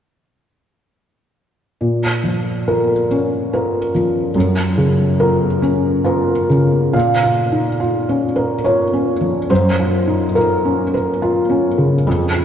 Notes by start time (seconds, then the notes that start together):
1.81 A#2
2.23 F3
2.68 F4 A#4
3.11 C#4
3.53 F4 A#4
3.94 F3
4.35 F#2
4.78 C#3
5.20 F4 A#4
5.62 C#4
6.04 F4 A#4
6.50 C#3
6.93 A#2 F5
7.23 F4
7.52 D#4
7.80 F4
8.09 C#4
8.36 A#4
8.64 F4 C#5
8.93 C#4
9.21 F3
9.50 F#2 C5
9.80 F4
10.07 D#4
10.35 F4 A#4
10.65 C#4
10.94 A#4
11.22 F4
11.49 C#4
11.78 C#3
12.07 F2
12.35 F4